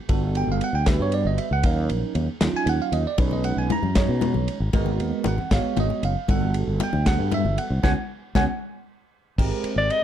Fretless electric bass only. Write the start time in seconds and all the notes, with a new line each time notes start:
0.09 G1
0.47 G1
0.73 D2
0.99 G2
1.25 G1
1.51 C#2
1.64 D#2
1.90 A#1
2.15 D#2
2.41 D#2
2.53 muted fretless electric bass stroke
2.66 D#2
2.92 D#2
3.18 B1
3.57 B1
3.82 F#2
4.08 B2
4.34 B1
4.60 G#1
4.73 G#1
4.98 D#2
5.25 G#1
5.51 G#1
5.77 G#1
6.03 F#1
6.29 G1
6.67 G1
6.93 D2
7.19 G2
7.45 G1
7.70 C2
7.84 C#2
8.35 C#2
9.38 G#1
9.64 muted fretless electric bass stroke
9.76 G#1